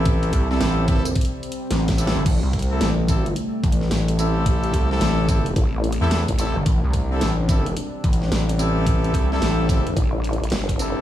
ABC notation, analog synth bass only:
X:1
M:4/4
L:1/16
Q:"Swing 16ths" 1/4=109
K:Am
V:1 name="Analog synth bass" clef=bass
A,,,2 C,,2 A,,,4 z4 A,,,3 G,,, | A,,, C,,3 A,,,4 z2 A,,,2 A,,,4- | A,,,2 C,,2 A,,,4 z3 E,,2 z2 G,,, | A,,, C,,3 A,,,4 z2 A,,,2 A,,,4- |
A,,,2 C,,2 A,,,4 z8 |]